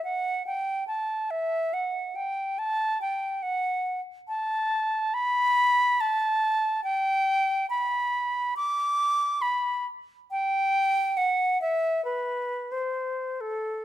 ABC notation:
X:1
M:4/4
L:1/16
Q:1/4=70
K:F#phr
V:1 name="Flute"
f2 g2 a2 e2 f2 g2 a2 g2 | [K:G] f3 z a4 b4 a4 | g4 b4 d'4 b2 z2 | g4 f2 e2 B3 c3 A2 |]